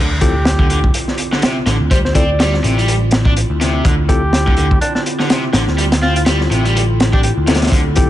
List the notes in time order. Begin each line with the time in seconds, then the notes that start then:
Already playing: D2 D3 C4 E4 F4, impact
0.21 C4 E4 F4 G4 A4, kick, closed hi-hat
0.45 snare, closed hi-hat
0.59 D3, kick
0.70 D3, closed hi-hat
0.84 kick
0.94 closed hi-hat
1.08 snare
1.18 closed hi-hat
1.32 D3, snare
1.42 C3, snare, closed hi-hat
1.66 A1 D3, snare, closed hi-hat
1.80 D2
1.91 G3 C5, kick, closed hi-hat
2.05 C5, snare
2.15 C4 E4 F4 A4 D5, kick, closed hi-hat
2.40 G3, snare, closed hi-hat
2.54 snare
2.64 A1 C3, closed hi-hat
2.78 G3, closed hi-hat
2.88 G3, closed hi-hat
3.11 snare, closed hi-hat
3.25 D4, kick
3.37 closed hi-hat
3.50 D2
3.61 C3, snare, closed hi-hat
3.85 D2 D3, kick, closed hi-hat
4.09 C4 E4 F4 G4 A4, kick, closed hi-hat
4.33 snare, closed hi-hat
4.47 D3, kick
4.57 D3, closed hi-hat
4.71 kick
4.81 D4, closed hi-hat
4.95 D4, snare
5.06 closed hi-hat
5.19 D3, snare
5.30 C3, snare, closed hi-hat
5.53 A1 D3, snare, closed hi-hat
5.67 D2, snare
5.78 G3, closed hi-hat
5.92 snare, closed hi-hat
6.02 C4 F4, snare
6.16 F4, closed hi-hat
6.26 G3, snare, closed hi-hat
6.41 snare
6.51 A1 C3, closed hi-hat
6.65 G3, closed hi-hat
6.75 G3, closed hi-hat
7.00 snare, closed hi-hat
7.13 D4 G4, kick
7.23 G4, closed hi-hat
7.37 D2
7.47 C3 C4 E4 F4 A4, snare, closed hi-hat
7.54 snare, closed hi-hat
7.62 snare, closed hi-hat
7.67 snare, closed hi-hat
7.71 D2 D3 A4, kick, closed hi-hat
7.96 C4 E4 F4 G4 A4, kick, closed hi-hat